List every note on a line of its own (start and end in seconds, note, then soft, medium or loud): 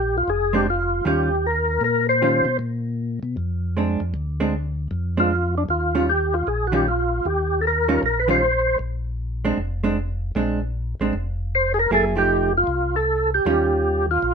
0.00 0.23 A#1 medium
0.00 0.17 G4 medium
0.18 0.30 F4 medium
0.28 1.01 F1 medium
0.28 0.55 G#4 medium
0.53 0.65 G#3 medium
0.53 0.66 C4 medium
0.53 0.66 D4 medium
0.53 0.67 G4 medium
0.70 1.04 F4 medium
1.05 1.79 D#2 medium
1.05 1.28 D#3 medium
1.05 1.28 G3 medium
1.05 1.29 C#4 medium
1.05 1.29 F4 medium
1.05 1.46 G4 medium
1.46 1.83 A#4 medium
1.81 2.42 A#2 medium
1.81 2.07 A#4 medium
2.09 2.57 C5 loud
2.22 2.44 D#3 soft
2.22 2.45 G3 soft
2.22 2.45 C#4 medium
2.22 2.45 F4 medium
2.45 2.59 B2 medium
2.59 3.19 A#2 medium
3.23 3.36 B2 medium
3.37 3.97 F2 medium
3.77 3.99 G#3 soft
3.77 4.00 C4 soft
3.77 4.00 D4 medium
4.00 4.14 F2 medium
4.14 4.88 D2 medium
4.40 4.53 G#3 medium
4.40 4.53 C4 medium
4.40 4.53 D4 medium
4.91 5.65 F2 medium
5.17 5.30 G#3 medium
5.17 5.30 C4 medium
5.17 5.30 D4 medium
5.17 5.55 F4 medium
5.58 5.64 D4 medium
5.69 6.43 D#2 medium
5.69 6.06 F4 medium
5.95 6.07 D#3 medium
5.95 6.08 G3 medium
5.95 6.08 C#4 medium
5.95 6.08 F4 medium
6.09 6.35 G4 medium
6.34 6.48 F4 medium
6.47 7.21 A#1 medium
6.47 6.67 G#4 medium
6.67 6.73 F#4 medium
6.72 6.85 D#3 medium
6.72 6.85 G3 medium
6.72 6.85 C#4 medium
6.72 6.85 F4 medium
6.72 6.88 G4 medium
6.88 7.27 F4 medium
7.25 7.99 D#2 medium
7.25 7.61 G4 medium
7.61 7.65 A4 medium
7.67 8.02 A#4 loud
7.88 8.01 D#3 medium
7.88 8.01 G3 medium
7.88 8.01 C#4 medium
7.88 8.02 F4 medium
8.03 8.77 A#1 medium
8.03 8.19 A#4 medium
8.20 8.28 B4 medium
8.28 8.40 D#3 medium
8.28 8.41 G3 medium
8.28 8.41 C#4 medium
8.28 8.41 F4 medium
8.28 8.78 C5 loud
8.79 9.54 A#1 medium
9.45 9.57 G#3 medium
9.45 9.57 C4 medium
9.45 9.57 D4 medium
9.58 10.32 F1 medium
9.84 9.96 G#3 medium
9.84 9.96 C4 medium
9.84 9.96 D4 medium
10.35 10.95 A#1 medium
10.35 10.58 G#3 medium
10.35 10.59 C4 medium
10.35 10.59 D4 medium
11.00 11.12 A1 medium
11.00 11.12 G#3 medium
11.00 11.13 C4 medium
11.00 11.13 D4 medium
11.13 11.87 F1 medium
11.55 11.73 C5 loud
11.74 11.79 G#4 medium
11.79 11.91 A#4 medium
11.90 12.64 F1 medium
11.90 12.13 F#3 soft
11.90 12.14 A#3 medium
11.90 12.14 E4 medium
11.90 12.14 G#4 medium
11.94 12.05 A4 medium
12.15 12.49 F3 soft
12.15 12.49 A3 soft
12.15 12.50 D#4 medium
12.15 12.50 G4 medium
12.15 12.53 G4 loud
12.57 12.95 F4 medium
12.67 13.41 C2 medium
12.96 13.30 A4 medium
13.34 14.06 G4 medium
13.45 14.18 D#2 medium
13.45 14.04 D#3 medium
13.45 14.04 G3 medium
13.45 14.04 C#4 medium
13.45 14.04 F4 medium
14.11 14.34 F4 loud
14.22 14.34 A#1 medium